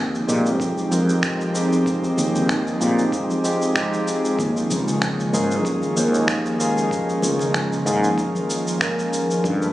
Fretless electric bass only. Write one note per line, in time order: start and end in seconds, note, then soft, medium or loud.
0.00 0.21 D#2 medium
0.28 0.60 A#2 medium
0.60 0.71 F2 medium
0.91 2.10 F2 medium
2.18 2.73 D#2 medium
2.81 3.03 A#2 medium
4.39 4.61 D#2 medium
4.70 5.26 C#2 medium
5.33 5.65 G#2 medium
5.65 5.77 D#2 medium
5.97 7.16 D#2 medium
7.23 7.79 C#2 medium
7.86 8.08 G#2 medium
9.44 9.66 G2 medium